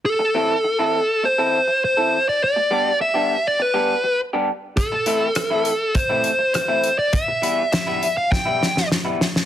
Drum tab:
HH |----------------|----------------|x-x-x-x-x-x-x-x-|x-x-x-x---------|
SD |----------------|----------------|----r-------r---|----o---o-ooo-oo|
BD |----------------|----------------|o-------o-------|o-------o-------|